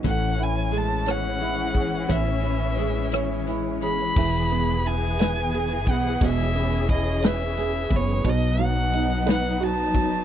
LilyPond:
<<
  \new Staff \with { instrumentName = "Violin" } { \time 6/8 \key e \major \tempo 4. = 59 fis''8 gis''8 a''8 fis''4. | e''2 r8 b''8~ | b''4 gis''4. fis''8 | e''4 dis''8 e''4 cis''8 |
dis''8 fis''4 fis''8 a''4 | }
  \new Staff \with { instrumentName = "Felt piano" } { \time 6/8 \key e \major a8 e'8 gis8 cis''8 e'8 gis'8 | e8 e'8 gis'8 cis''8 e'8 gis'8 | e8 b8 e'8 b'8 gis'8 b8 | b,8 b8 e'8 b'8 gis'8 b8 |
b,8 fis8 dis'8 b'8 fis'8 fis8 | }
  \new Staff \with { instrumentName = "String section" } { \time 6/8 \key e \major << { <e cis'>2.~ | <e cis'>2. | <e gis'>2.~ | <e gis'>2. |
<fis dis'>2. | } \\ { r2. | r2. | b2. | cis'2. |
b2. | } >> }
  \new Staff \with { instrumentName = "Clean electric guitar" } { \clef bass \time 6/8 \key e \major <e cis'>8 e8 gis8 e8 gis8 e8 | <e cis'>8 e8 gis8 e8 gis8 e8 | r2. | r2. |
r2. | }
  \new Staff \with { instrumentName = "Fretless electric bass" } { \clef bass \time 6/8 \key e \major a,,2. | a,,2. | e,,2~ e,,8 b,,8 | e,,2~ e,,8 fis,,8 |
b,,2~ b,,8 fis,,8 | }
  \new DrumStaff \with { instrumentName = "Drums" } \drummode { \time 6/8 <hh bd>8 hh8 hh8 <hh ss>8 <hh ss>8 <hh bd>8 | <hh bd>8 hh8 hh8 <hh ss>8 <hh ss>8 hh8 | <cymc bd>8 cymr8 cymr8 <cymr sn>8 cymr8 <bd cymr>8 | <bd cymr>8 cymr8 <bd cymr>8 <cymr sn>8 <cymr sn>8 <bd cymr>8 |
<bd cymr>8 cymr8 cymr8 <cymr sn>8 cymr8 <bd cymr>8 | }
>>